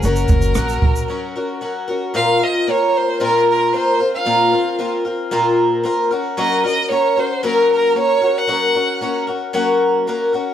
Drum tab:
SH |xxxxxx-x--------|----------------|----------------|----------------|
SD |----r-----------|----------------|----------------|----------------|
BD |--o---o---------|----------------|----------------|----------------|

SH |----------------|
SD |----------------|
BD |----------------|